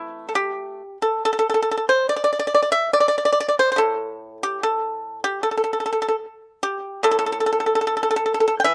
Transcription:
Already playing: E3 A3 C4 E4
0.29 A4
0.35 G4
1.02 A4
1.25 A4
1.33 A4
1.39 A4
1.50 A4
1.54 A4
1.62 A4
1.71 A4
1.77 A4
1.89 C5
2.09 D5
2.16 D5
2.24 D5
2.33 D5
2.39 D5
2.47 D5
2.54 D5
2.62 D5
2.72 E5
2.93 D5
3.00 D5
3.08 D5
3.18 D5
3.25 D5
3.33 D5
3.40 D5
3.48 D5
3.59 C5
3.72 C5
3.76 A2 A4
4.43 G4
4.63 A4
5.24 G4
5.43 A4
5.51 A4
5.57 A4
5.64 A4
5.73 A4
5.80 A4
5.86 A4
5.93 A4
6.02 A4
6.08 A4
6.63 G4
7.03 A2 A4
7.11 A4
7.19 A4
7.26 A4
7.32 A4
7.40 A4
7.46 A4
7.53 A4
7.60 A4
7.66 A4
7.75 A4
7.81 A4
7.87 A4
7.97 A4
8.03 A4
8.11 A4
8.16 A4
8.26 A4
8.34 A4
8.40 A4
8.48 A4
8.60 G5
8.64 E3 E5

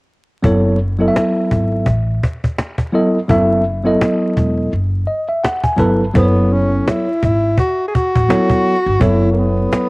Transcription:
0.42 F#1 F#3 B3 E4 A4 C#5, cajon bass
0.99 F#3 B3 E4 A4 D#5, cajon slap
1.08 E5
1.16 cajon slap
1.51 G#1, cajon bass
1.72 cajon slap
1.86 A1, cajon bass
2.23 cajon bass
2.44 cajon bass
2.58 cajon slap
2.78 cajon bass
2.92 F#3 B3 E4 A4 D#5
3.15 cajon slap
3.28 F#1 F#3 B3 E4 A4 E5, cajon bass
3.84 F#3 B3 E4 A4 D#5, cajon slap
4.01 cajon slap
4.37 E1, cajon bass
4.58 cajon slap
4.73 F#1, cajon slap
5.07 D#5
5.28 E5, cajon slap
5.44 F#5, cajon slap
5.64 G#5, cajon bass
5.77 G1 F#3 B3 E4 A4 B4 A5, cajon bass
6.01 cajon slap
6.13 F#1 F#3 B3 E4 A4 C5, cajon bass
6.22 C#5
6.52 C#4
6.72 cajon slap
6.87 E4, cajon slap
7.23 G#1 E4, cajon bass
7.43 cajon slap
7.58 F#4, cajon bass
7.88 G#4
7.95 F#4, cajon bass
8.15 A1, cajon bass
8.28 F#3 B3 E4 A4 C#5, cajon slap
8.49 cajon bass
8.86 G1, cajon slap
8.99 F#1 F#3 B3 E4 A4 C#5, cajon bass
9.32 A#3
9.38 B3
9.57 cajon slap
9.73 cajon slap

